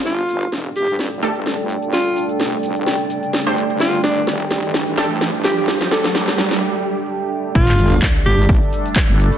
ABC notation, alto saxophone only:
X:1
M:4/4
L:1/16
Q:"Swing 16ths" 1/4=128
K:Cmix
V:1 name="Alto saxophone"
F4 z2 G2 z8 | F3 z12 z | F2 D2 z8 z2 G G | z2 A4 z8 z2 |
F4 z2 G2 z8 |]